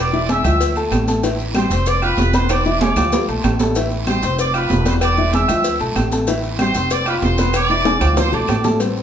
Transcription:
Already playing: E1
0.00 D5 D6
0.13 E3 E4 E5, high conga, maracas
0.29 G#3 G#4 E5 G#5 E6, cowbell, high conga, low timbale, low agogo, short guiro, maracas
0.44 D2 F3 F4 E5, high conga, low conga, low agogo, short guiro, claves, maracas
0.60 cowbell, high conga, long guiro, maracas
0.76 A3 A4 A5, high conga, low agogo, maracas
0.91 A1, cowbell, high conga, low timbale, low agogo, short guiro, claves, maracas
1.08 A3 A4 A5, cowbell, high conga, short guiro, maracas
1.23 E3 E4 E5, cowbell, low agogo, long guiro, maracas
1.39 high conga, maracas
1.55 G3 G4 C5 G5 C6, cowbell, high conga, low timbale, low agogo, short guiro, claves, maracas
1.70 F1 C4 C5 C6, cowbell, low agogo, short guiro, maracas
1.86 D5 D6, cowbell, high conga, long guiro, maracas
2.02 F4 B4 F5 B5 F6, high conga, low agogo, claves, maracas
2.17 E1, cowbell, high conga, low timbale, short guiro, maracas
2.33 B3 B4 C5 B5 C6, cowbell, high conga, low agogo, short guiro, maracas
2.49 D5 D6, cowbell, high conga, high timbale, low agogo, long guiro, claves, maracas
2.65 E3 E4 E5, high conga, maracas
2.81 G#3 G#4 D5 G#5 D6, cowbell, high conga, low timbale, low agogo, short guiro, maracas
2.96 D2 F3 F4 F5, high conga, low conga, low timbale, low agogo, short guiro, claves, maracas
3.12 cowbell, high conga, low conga, low timbale, long guiro, maracas
3.28 B1 A3 A4 A5, high conga, low agogo, maracas
3.44 A1, cowbell, high conga, low timbale, low agogo, short guiro, claves, maracas
3.59 A3 A4 A5, cowbell, high conga, low timbale, short guiro, maracas
3.75 E3 E4 E5, cowbell, high conga, low agogo, long guiro, maracas
3.91 high conga, maracas
4.07 G3 G4 C5 G5 C6, cowbell, high conga, low timbale, low agogo, short guiro, claves, maracas
4.22 F1 C4 C5 C6, cowbell, low agogo, short guiro, maracas
4.39 D5 D6, cowbell, high conga, long guiro, maracas
4.54 F4 B4 F5 B5 F6, high conga, low agogo, claves, maracas
4.70 E1, cowbell, high conga, low timbale, short guiro, maracas
4.85 B3 B4 C5 B5 C6, cowbell, high conga, low agogo, short guiro, maracas
5.01 D5 D6, cowbell, low agogo, long guiro, claves, maracas
5.17 E3 E4 E5, high conga, maracas
5.33 G#3 G#4 E5 G#5 E6, cowbell, high conga, low timbale, low agogo, short guiro, maracas
5.48 D2 F3 F4 E5, high conga, low conga, low agogo, short guiro, claves, maracas
5.64 cowbell, high conga, long guiro, maracas
5.80 B1 A3 A4 A5, high conga, low agogo, maracas
5.96 A1, cowbell, high conga, low timbale, low agogo, short guiro, claves, maracas
6.12 A3 A4 A5, cowbell, high conga, short guiro, maracas
6.27 E3 E4 E5, cowbell, high conga, low agogo, long guiro, maracas
6.43 high conga, maracas
6.59 G3 G4 C5 G5 C6, cowbell, high conga, low timbale, low agogo, short guiro, claves, maracas
6.74 F1 C4 C5 C6, cowbell, low agogo, short guiro, maracas
6.90 D5 D6, cowbell, high conga, long guiro, maracas
7.06 F4 B4 F5 B5 F6, high conga, low agogo, claves, maracas
7.22 E1 C5 C6, cowbell, high conga, low timbale, short guiro, maracas
7.38 B3 B4 B5, cowbell, high conga, low agogo, short guiro, maracas
7.53 D5 D6, cowbell, low agogo, long guiro, claves, maracas
7.70 E3 E4 E5, high conga, maracas
7.85 G#3 G#4 G#5, cowbell, high bongo, high conga, low timbale, low agogo, short guiro, maracas
8.01 D2 F3 F4 F5, high conga, low conga, high timbale, low agogo, short guiro, claves, maracas
8.17 C5 C6, cowbell, low bongo, high conga, high timbale, long guiro, maracas
8.32 B1 A3 A4 D5 A5 D6, low bongo, high conga, low agogo, maracas
8.48 A1, cowbell, low bongo, high conga, low timbale, low agogo, short guiro, claves, maracas
8.64 A3 A4 A5, cowbell, low bongo, high conga, low timbale, short guiro, maracas
8.79 G3 B3 C4, cowbell, high conga, low agogo, long guiro, maracas
8.96 high conga, maracas

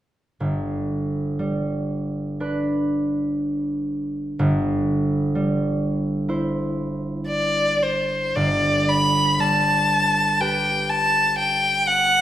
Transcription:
0.40 G1
1.39 G3
2.40 D4 B4
4.39 G1
5.35 G3
6.29 E4 C5
7.28 D5
7.83 C5
8.36 G1 D5
8.89 B5
9.39 G3 A5
10.40 G4 B4 G5
10.90 A5
11.38 G5
11.87 F#5

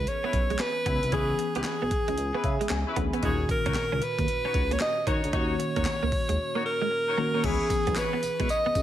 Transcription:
Already playing: E3 B3 C#4 G#4
0.07 C#5, closed hi-hat
0.23 B3 C#4 E4 B4
0.33 B1, muted clean electric guitar stroke, kick, closed hi-hat
0.50 G#3, closed hi-hat
0.59 B4, snare, clap, closed hi-hat
0.86 C#2 B3 C#4 E4 B4, kick, closed hi-hat
1.03 C2, closed hi-hat
1.12 C#2 E3 B3 C#4 E4 G#4 B4, kick, closed hi-hat
1.39 muted clean electric guitar stroke, closed hi-hat
1.55 C#2 B3 C#4 E4 G#4 B4, closed hi-hat
1.64 snare, clap, closed hi-hat
1.82 B1 B3
1.91 muted clean electric guitar stroke, kick, closed hi-hat
2.08 C#2 G#3, closed hi-hat
2.18 C#2, closed hi-hat
2.34 B3 C#4 E4 B4
2.44 C#3 E5, muted clean electric guitar stroke, kick, closed hi-hat
2.61 G#3, closed hi-hat
2.69 C#2 G#5, muted clean electric guitar stroke, snare, clap, closed hi-hat
2.87 C#4 E4 B4
2.96 D2 E3 B3 C#4 G#4 B5, kick, closed hi-hat
3.13 B3 C#4 E4 B4, closed hi-hat
3.22 D#2 A#2 D#3 C#4 D#4 F4 F#4 G#4 C#5, kick, closed hi-hat
3.31 F#4
3.49 A#4, muted clean electric guitar stroke, kick, closed hi-hat
3.66 C#2 C#4 D#4 F#4 C#5, kick, closed hi-hat
3.74 snare, clap, closed hi-hat
3.92 C#2 C#4
4.02 B4, muted clean electric guitar stroke, closed hi-hat
4.19 D#2 A#3, kick, closed hi-hat
4.28 closed hi-hat
4.45 C#4 D#4 F#4 C#5
4.54 C#2, muted clean electric guitar stroke, kick, closed hi-hat
4.71 A#3 C#5, closed hi-hat
4.80 D#5, snare, clap, closed hi-hat
5.07 D#2 C#4 D#4 F#4 C#5, kick, closed hi-hat
5.24 D2, closed hi-hat
5.33 D#2 D#3 A#3 C#4 D#4 F#4 C#5, kick, closed hi-hat
5.59 muted clean electric guitar stroke, closed hi-hat
5.76 D#2 A#3 D#4 F#4 C#5, kick, closed hi-hat
5.85 snare, clap, closed hi-hat
6.03 C#2 A#3
6.12 muted clean electric guitar stroke, kick, open hi-hat
6.29 D#2 G#3, closed hi-hat
6.55 A#3 D#4 F#4 C#5
6.65 A#4, muted clean electric guitar stroke
6.82 G#3
6.91 muted clean electric guitar stroke
7.08 D#4 F#4 C#5
7.17 D#3 A#3 C#4 F#4
7.34 A#3 D#4 F#4 C#5
7.43 C#2 D#3 B3 C#4 E4 G#4 B4 C#5, kick, closed hi-hat, crash
7.49 E3
7.70 muted clean electric guitar stroke, kick, closed hi-hat, tambourine
7.87 B1 B3, kick, closed hi-hat
7.96 E4 B4 C#5, snare, clap, closed hi-hat, tambourine
8.13 B3
8.23 B1, muted clean electric guitar stroke, closed hi-hat, tambourine
8.39 B1 G#3 E4 B4 C#5, kick, closed hi-hat
8.49 D#5, closed hi-hat, tambourine
8.66 C#2 B3
8.75 C#2, muted clean electric guitar stroke, kick, closed hi-hat, tambourine

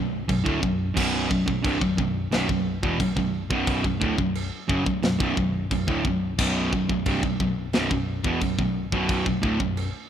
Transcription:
Already playing: B0 B1 F#2
0.29 B0 B1 F#2, kick, china
0.45 D1 D2 A2, kick
0.63 B0 B1 F#2, kick
0.96 B0 B1 F#2 B2, kick, china, crash
1.31 B0 B1 F#2, kick
1.48 B0 B1 F#2, kick
1.65 C1 C2 G2, kick, china
1.81 B0 B1 F#2, kick
1.98 B0 B1 F#2, kick
2.32 B0 B1 F#2, snare, china
2.49 B0 B1 F#2, kick
2.83 E1 E2 B2, kick
3.00 B0 B1 F#2, kick, china
3.17 B0 B1 F#2, kick
3.51 B0 B1 F#2 B2, kick
3.67 kick, china
3.84 B0 B1 F#2, kick
4.02 D1 D2 A2, kick
4.18 B0 B1 F#2, kick
4.35 china
4.69 F#1 F#2 C#3, kick
4.86 B0 B1 F#2, kick
5.03 B0 B1 F#2, snare, china
5.20 B0 B1 F#2, kick
5.37 B0 B1 F#2, kick
5.71 B0 B1 F#2, kick, china
5.88 D1 D2 A2, kick
6.05 B0 B1 F#2, kick
6.38 B0 B1 F#2 B2, kick, crash, china
6.73 B0 B1 F#2, kick
6.89 B0 B1 F#2, kick
7.06 C1 C2 G2, kick, china
7.23 B0 B1 F#2, kick
7.40 B0 B1 F#2, kick
7.73 B0 B1 F#2, snare, china
7.91 B0 B1 F#2, kick
8.24 E1 E2 B2, kick
8.41 B0 B1 F#2, kick, china
8.59 B0 B1 F#2, kick
8.92 B0 B1 F#2 B2, kick
9.09 kick, china
9.26 B0 B1 F#2, kick
9.43 D1 D2 A2, kick
9.60 B0 B1 F#2, kick
9.77 china

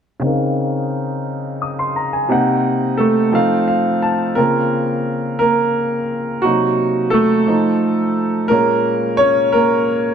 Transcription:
0.20 C#3 C4 D#4
0.25 A#4 F5
1.62 D#6
1.79 C6
1.96 A#5
2.13 G#5
2.29 C3 A#3 C4 D#4 F#5
2.97 A3 A4
3.32 F3 C4 D#4 A4 F5
3.68 F5
4.02 A5
4.35 C#3 A#3 C4 F4 A#4
5.39 A#3 A#4
6.42 C3 F#3 A#3 D#4 F#4
7.10 A3 A4
7.47 F3 A3 D#4
8.48 A#2 G#3 A#3 C#4 A#4
9.17 C#4 C#5
9.52 A#3 A#4

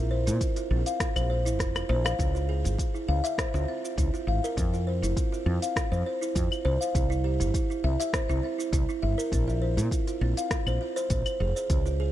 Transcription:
Already playing: A#1
0.11 C5
0.26 A#2 E4, open hi-hat, shaker
0.41 F4, kick, open hi-hat, shaker
0.56 F4, open hi-hat, shaker
0.71 A#1 C4
0.86 F5, open hi-hat, shaker
1.00 F4, kick, cross-stick, open hi-hat, shaker
1.16 A#1 C5, open hi-hat, claves, shaker
1.30 C5
1.45 E4, open hi-hat, shaker
1.59 F1 F4, kick, cross-stick, open hi-hat, shaker
1.75 F4, cross-stick, open hi-hat, claves, shaker
1.89 A#1 C5
2.05 F5, cross-stick, open hi-hat, claves, shaker
2.19 C#2 F4, kick, open hi-hat, shaker
2.35 F4, shaker
2.49 G#4
2.64 G#1 F4, open hi-hat, shaker
2.78 F4, kick, open hi-hat, shaker
2.94 E4, shaker
3.08 C#2 F5
3.24 E5, open hi-hat, shaker
3.38 C5, kick, cross-stick, open hi-hat, shaker
3.54 C#2 F4, shaker
3.68 C4
3.84 F4, shaker
3.97 C#2 E4, kick, open hi-hat, shaker
4.14 F4, shaker
4.27 G#1 F5
4.44 A#4, shaker
4.57 F2 C4, kick, open hi-hat, shaker
4.74 F4, shaker
4.87 C5
5.02 F1 E4, open hi-hat, shaker
5.17 F4, kick, open hi-hat, shaker
5.32 F4, shaker
5.46 F2 C4
5.62 F5, open hi-hat, shaker
5.76 F4, kick, cross-stick, open hi-hat, shaker
5.92 F2 C5, shaker
6.06 C5
6.21 E4, shaker
6.35 F2 F4, kick, open hi-hat, shaker
6.51 F4, claves, shaker
6.65 C2 C5
6.81 F5, shaker
6.95 C2 E4, kick, open hi-hat, shaker
7.10 E4, shaker
7.24 G4
7.40 G1 E4, open hi-hat, shaker
7.54 E4, kick, open hi-hat, shaker
7.70 E4, shaker
7.84 C2 E5
8.00 E5, open hi-hat, shaker
8.13 C5, kick, cross-stick, open hi-hat, shaker
8.29 C2 E4, shaker
8.43 C4
8.58 E4, shaker
8.73 C2 E4, kick, open hi-hat, shaker
8.89 E4, shaker
9.02 G1 E5
9.18 A#4, shaker
9.32 A#1 C4, kick, open hi-hat, shaker
9.48 F4, shaker
9.62 C5
9.77 A#2 E4, open hi-hat, shaker
9.91 F4, kick, open hi-hat, shaker
10.07 F4, open hi-hat, shaker
10.21 A#1 C4
10.37 F5, open hi-hat, shaker
10.51 F4, kick, cross-stick, open hi-hat, shaker
10.66 A#1 C5, claves, shaker
10.81 F4
10.96 C5, shaker
11.10 A#1 C5, kick, open hi-hat, shaker
11.26 C5, open hi-hat, claves, shaker
11.40 F1 G#4
11.56 C5, shaker
11.70 C#2 F4, kick, open hi-hat, shaker
11.86 F4, shaker
12.00 G#4

